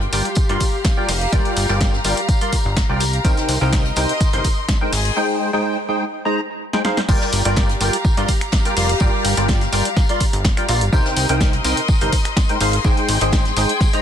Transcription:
Already playing: G4 F5 G5 C6
0.01 closed hi-hat
0.13 G1 G3 F4 A#4 D5 G5, open hi-hat, tambourine
0.25 closed hi-hat
0.35 kick, closed hi-hat, tambourine
0.49 G2 G3 F4 A#4 D5 A#5 C6, closed hi-hat
0.60 kick, open hi-hat, tambourine
0.85 kick, snare, closed hi-hat, tambourine
0.97 G3 F4 A#4 D5 G5
1.08 F1, open hi-hat
1.21 closed hi-hat
1.32 G1 G3 F4 A#4 D5 G5, kick, closed hi-hat, tambourine
1.45 closed hi-hat
1.57 G1, open hi-hat, tambourine
1.69 G1 G3 F4 A#4 D5 G5, snare
1.81 kick, snare, closed hi-hat, tambourine
1.94 snare
2.04 G1 G3 F4 A#4 D5 G5, open hi-hat, tambourine
2.17 closed hi-hat
2.29 kick, closed hi-hat, tambourine
2.41 G3 F4 A#4 D5 C6, closed hi-hat
2.52 kick, open hi-hat, tambourine
2.65 G1
2.77 kick, snare, closed hi-hat, tambourine
2.89 C2 G3 F4 A#4 D5 G5
3.00 open hi-hat, tambourine
3.13 closed hi-hat
3.25 C2 C3 D#4 A#4 C5 G5, kick, closed hi-hat, tambourine
3.37 snare, closed hi-hat
3.49 C2, open hi-hat, tambourine
3.61 C2 C3 D#4 A#4 C5 D#5 G5
3.72 kick, snare, closed hi-hat, tambourine
3.85 closed hi-hat
3.96 C2 C3 D#4 A#4 C5 G5, open hi-hat, tambourine
4.00 C6
4.09 closed hi-hat
4.20 kick, closed hi-hat, tambourine
4.33 G1 C3 D#4 A#4 C5 C6, closed hi-hat
4.44 kick, open hi-hat, tambourine
4.69 kick, snare, closed hi-hat, tambourine
4.81 G#3 D#4 A#4 C5 G5
4.93 G#1 G#4, open hi-hat
5.05 closed hi-hat
5.11 G5
5.17 G#3 D#4 G#4 C5 G5
5.53 G#3 D#4 G#4 C5 G5
5.89 G#3 D#4 G#4 C5 G5
6.25 G#3 D#4 G#4 C5 A#5
6.73 G#3 D#4 G#4 C5 G5, snare
6.85 D#4 G#4 C5 F5, snare
6.97 snare
7.09 G1 G3 F4 G4 A#4 D5 G5, kick, crash, tambourine
7.21 A#5, snare
7.33 G1, open hi-hat, tambourine
7.41 F5
7.45 G1 G3 F4 A#4 D5 G5, closed hi-hat
7.56 kick, snare, tambourine
7.69 closed hi-hat
7.81 G1 G3 F4 A#4 D5 G5, open hi-hat, tambourine
7.93 closed hi-hat
8.05 kick, tambourine
8.17 G2 G3 F4 A#4 D5 C6, closed hi-hat
8.28 kick, open hi-hat, tambourine
8.41 finger snap, closed hi-hat
8.52 kick, snare, tambourine
8.65 G3 F4 A#4 D5 G5, closed hi-hat
8.77 F1 G3 F4 A#4 D5 F5, open hi-hat
8.89 closed hi-hat
9.00 G1 G3 F4 A#4 D5 G5, kick, tambourine
9.24 G1, open hi-hat, tambourine
9.37 G1 G3 F4 A#4 D5 G5, snare, closed hi-hat
9.48 kick, snare, tambourine
9.61 snare, closed hi-hat
9.72 G1 G3 F4 A#4 D5 G5, open hi-hat, tambourine
9.85 closed hi-hat
9.97 kick, snare, tambourine
10.09 G3 F4 A#4 D5 C6, closed hi-hat
10.20 kick, open hi-hat, tambourine
10.33 G1, closed hi-hat
10.45 kick, snare, tambourine
10.57 G3 F4 A#4 D5 G5, finger snap, closed hi-hat
10.69 A#1 F4 A#4 D5 F5, open hi-hat, tambourine
10.81 G1, closed hi-hat
10.93 C2 C3 D#4 A#4 C5 G5, kick, tambourine
11.06 D#5, snare
11.16 C2, open hi-hat, tambourine
11.29 C2 C3 D#4 A#4 C5 G5, closed hi-hat
11.41 kick, snare, tambourine
11.49 C6
11.53 closed hi-hat
11.65 C2 C3 D#4 A#4 C5 G5, open hi-hat, tambourine
11.77 closed hi-hat
11.88 kick, tambourine
12.01 G1 C3 D#4 A#4 C5 C6, closed hi-hat
12.13 kick, open hi-hat, tambourine
12.25 finger snap, closed hi-hat
12.37 kick, snare, tambourine
12.49 G#3 D#4 A#4 C5 G5, closed hi-hat
12.61 G#1 G#3 D#4 G#4 C5 F5, open hi-hat
12.73 closed hi-hat
12.84 G#1 G#3 D#4 G#4 C5 G5, kick, tambourine
12.92 G5
12.97 closed hi-hat
13.09 G#1, open hi-hat, tambourine
13.20 G#1 G#3 D#4 G#4 C5 G5, snare, closed hi-hat
13.32 kick, snare, tambourine
13.45 snare, closed hi-hat
13.56 G#1 G#3 D#4 G#4 C5 G5, open hi-hat, tambourine
13.69 closed hi-hat
13.81 kick, snare, tambourine
13.93 G#3 D#4 G#4 C5 A#5, closed hi-hat

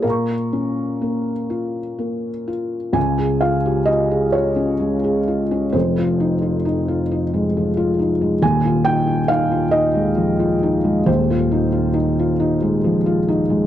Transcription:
Already playing: F4
0.02 A#2 A#4 F5
0.07 A#5 C#6
0.53 C#4
1.02 A#3
1.50 F4
1.99 A#3
2.48 F4
2.93 C#2 C#3 G#5
3.18 G#4
3.41 F4 F5
3.66 G4
3.85 F4 D#5
4.11 G#4
4.32 F4 C#5
4.56 C#4
4.80 G#3
5.04 G#4
5.28 F4
5.51 C#4
5.72 F1 F2 C5
5.98 F4
6.20 D#4
6.42 F4
6.65 D#4
6.88 F4
7.11 D#4
7.34 G#3
7.57 F3
7.77 F4
7.99 D#4
8.21 G#3
8.42 D#1 D#2 G#5
8.65 F4
8.85 D#4 G5
9.07 F4
9.28 D#4 F5
9.52 F4
9.71 D#4 D#5
9.94 G#3
10.16 F3
10.40 F4
10.63 D#4
10.84 G#3
11.06 D#1 D#2 C5
11.30 F4
11.51 D#4
11.72 F4
11.94 D#4
12.19 F4
12.40 D#4
12.62 G#3
12.84 F3
13.06 F4
13.28 D#4
13.50 G#3

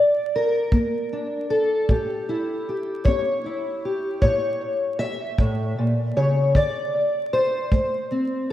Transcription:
Already playing: A#2 D5
0.35 A#4
0.72 A#3, kick
1.13 D4
1.50 A4
1.89 A2 G4, kick
2.29 E4
2.69 G4
3.05 C#4 C#5, kick
3.46 E4
3.85 G4
4.22 A2 C#5, kick
4.99 E5
5.38 A2, kick
5.78 A#2
6.16 C#3 C#5
6.55 D3 D5, kick
7.33 C5
7.72 A3, kick
8.11 C4

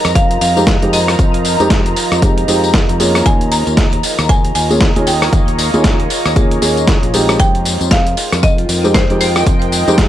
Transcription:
Already playing: F3 G3 G#3 C4 D#4 F4 A#4 C5 D#5 G#5 A#5
0.05 F2, cross-stick, closed hi-hat, tambourine
0.15 F5, kick, closed hi-hat, tambourine
0.31 closed hi-hat
0.41 F2 F5, open hi-hat, tambourine
0.56 G#3 C4 D#4 G4, tambourine
0.67 kick, snare, closed hi-hat
0.82 F2 G#3 C4 D#4 G4, closed hi-hat
0.93 D#5, open hi-hat, tambourine
1.08 cross-stick, tambourine
1.19 F2, kick, closed hi-hat, tambourine
1.34 closed hi-hat
1.45 open hi-hat, tambourine
1.60 F2 G#3 C4 D#4 G4, closed hi-hat, tambourine
1.70 kick, snare, closed hi-hat, tambourine
1.86 closed hi-hat
1.96 open hi-hat, tambourine
2.12 F2, cross-stick, closed hi-hat, tambourine
2.22 G#3 C4 D#4 G4, kick, closed hi-hat, tambourine
2.38 closed hi-hat
2.48 F2 G#3 C4 D#4 G4, open hi-hat, tambourine
2.64 tambourine
2.74 kick, snare, closed hi-hat, tambourine
2.89 F2, closed hi-hat
3.00 A#3 C#4 F4 G#4, open hi-hat, tambourine
3.15 cross-stick, tambourine
3.26 D#2 A#3 F4 G#4 C#5 D#5 G#5, kick, closed hi-hat, tambourine
3.41 closed hi-hat
3.52 A#5, open hi-hat, tambourine
3.67 D#2, closed hi-hat, tambourine
3.77 kick, snare, closed hi-hat, tambourine
3.93 closed hi-hat
4.03 open hi-hat, tambourine
4.19 D#2, cross-stick, closed hi-hat, tambourine
4.29 G#5, kick, closed hi-hat, tambourine
4.45 closed hi-hat
4.55 D#2 G#5, open hi-hat, tambourine
4.70 A#3 C#4 F4 G#4, tambourine
4.81 kick, snare, closed hi-hat, tambourine
4.96 D#2 A#3 C#4 F4 G#4, closed hi-hat
5.07 G5, open hi-hat, tambourine
5.22 cross-stick, tambourine
5.33 D#2, kick, closed hi-hat, tambourine
5.48 closed hi-hat
5.59 open hi-hat, tambourine
5.74 D#2 A#3 C#4 F4 G#4, closed hi-hat, tambourine
5.84 kick, snare, closed hi-hat, tambourine
6.00 closed hi-hat
6.10 open hi-hat, tambourine
6.26 D#2, cross-stick, closed hi-hat, tambourine
6.36 A#3 C#4 F4 G#4, kick, closed hi-hat, tambourine
6.51 closed hi-hat
6.62 D#2 A#3 C#4 F4 G#4, open hi-hat, tambourine
6.77 closed hi-hat, tambourine
6.88 kick, snare, closed hi-hat, tambourine
7.03 A#1, closed hi-hat
7.14 G#3 C4 D#4 G4, open hi-hat, tambourine
7.29 cross-stick, tambourine
7.40 F2 G#3 D#4 F4 C5 D#5 G5, kick, closed hi-hat, tambourine
7.55 closed hi-hat
7.65 open hi-hat, tambourine
7.72 A#4
7.81 F2, closed hi-hat, tambourine
7.91 F5, kick, snare, closed hi-hat
8.07 closed hi-hat
8.17 open hi-hat, tambourine
8.22 D#5
8.27 G5
8.32 F2, cross-stick, closed hi-hat, tambourine
8.43 D#5, kick, closed hi-hat, tambourine
8.58 closed hi-hat
8.69 F2, open hi-hat, tambourine
8.84 G#3 C4 D#4 G4, tambourine
8.94 C5, kick, snare, closed hi-hat, tambourine
9.10 F2 G#3 C4 D#4 G4, closed hi-hat
9.21 C5, open hi-hat, tambourine
9.36 cross-stick, tambourine
9.46 F2, kick, closed hi-hat, tambourine
9.62 closed hi-hat
9.72 open hi-hat, tambourine
9.88 F2 G#3 C4 D#4 G4, closed hi-hat, tambourine
9.98 kick, snare, closed hi-hat, tambourine

